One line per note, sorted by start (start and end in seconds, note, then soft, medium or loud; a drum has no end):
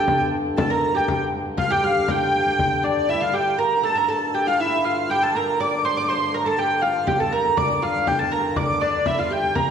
0.00 3.08 G2 medium
0.00 3.08 D3 medium
0.00 0.18 G4 medium
0.00 0.20 G5 medium
0.08 frame drum medium
0.57 0.70 A4 medium
0.57 0.70 A5 medium
0.57 frame drum medium
0.70 0.94 A#4 medium
0.70 0.97 A#5 loud
0.95 1.18 G4 medium
0.95 1.20 G5 medium
1.08 frame drum medium
1.57 1.70 F4 medium
1.57 1.72 F5 loud
1.57 frame drum medium
1.70 2.06 G4 medium
1.70 1.84 G5 loud
1.84 2.10 F5 loud
2.08 2.80 G4 medium
2.08 2.85 G5 medium
2.08 frame drum medium
2.59 frame drum medium
2.83 3.08 D4 medium
2.83 3.09 D5 medium
2.83 frame drum soft
3.09 7.06 G2 medium
3.09 7.06 D3 medium
3.09 3.22 E4 medium
3.09 3.22 E5 medium
3.21 3.33 F4 medium
3.21 3.34 F5 medium
3.33 3.58 G4 medium
3.33 3.59 G5 medium
3.58 3.83 A#4 medium
3.58 3.85 A#5 medium
3.83 3.95 A4 medium
3.83 3.97 A5 medium
3.95 4.08 A#4 medium
3.95 4.10 A#5 medium
4.08 4.34 A4 medium
4.08 4.34 A5 medium
4.34 4.47 G4 medium
4.34 4.47 G5 medium
4.47 4.60 F4 medium
4.47 4.60 F5 medium
4.60 4.85 E4 medium
4.60 4.84 E5 medium
4.84 5.10 F4 medium
4.84 5.10 F5 medium
5.10 5.22 G4 medium
5.10 5.23 G5 loud
5.23 5.33 A4 medium
5.23 5.35 A5 medium
5.35 5.60 A#4 medium
5.35 5.60 A#5 medium
5.60 5.84 D5 medium
5.60 5.85 D6 loud
5.85 5.97 C5 medium
5.85 5.97 C6 loud
5.97 6.09 D5 medium
5.97 6.09 D6 loud
6.08 6.34 C5 medium
6.08 6.34 C6 loud
6.34 6.47 A#4 medium
6.34 6.42 A#5 medium
6.42 6.58 A4 medium
6.42 6.58 A5 medium
6.42 6.46 A#5 medium
6.58 6.82 G4 medium
6.58 6.82 G5 medium
6.82 7.06 F4 medium
6.82 7.08 F5 medium
7.07 9.71 G2 medium
7.07 9.71 D3 medium
7.07 7.20 G4 medium
7.07 7.20 G5 medium
7.07 frame drum medium
7.20 7.33 A4 medium
7.20 7.33 A5 medium
7.33 7.57 A#4 medium
7.33 7.58 A#5 medium
7.57 7.83 D5 medium
7.57 7.83 D6 medium
7.57 frame drum medium
7.82 8.07 F4 medium
7.82 8.08 F5 medium
8.07 8.19 G4 medium
8.07 8.20 G5 medium
8.07 frame drum medium
8.19 8.32 A4 medium
8.19 8.33 A5 medium
8.31 8.56 A#4 medium
8.31 8.57 A#5 medium
8.56 8.82 D5 medium
8.56 8.82 D6 medium
8.56 frame drum medium
8.81 9.07 D4 medium
8.81 9.07 D5 medium
9.06 9.18 E4 medium
9.06 9.19 E5 medium
9.06 frame drum medium
9.19 9.30 F4 medium
9.19 9.32 F5 medium
9.30 9.56 G4 medium
9.30 9.57 G5 medium
9.55 9.71 A#4 medium
9.55 9.71 A#5 medium
9.55 frame drum medium